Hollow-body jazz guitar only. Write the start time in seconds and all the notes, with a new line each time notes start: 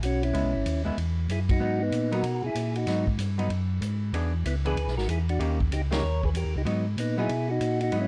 0.33 G#3 B3 E4
0.85 G#3 B3 E4
1.60 F#3 B3 D#4
2.12 F#3 B3 D#4
2.87 F#3 B3 D#4
3.38 F#3 B3 D#4
4.14 E3 B3 D4 G#4
4.65 E3 B3 D4 G#4
5.40 D#3 A#3 C#4 G4
5.91 D#3 A#3 C#4 G4
6.65 F#3 B3 D#4
7.18 F#3 B3 D#4
7.92 F#3 B3 D#4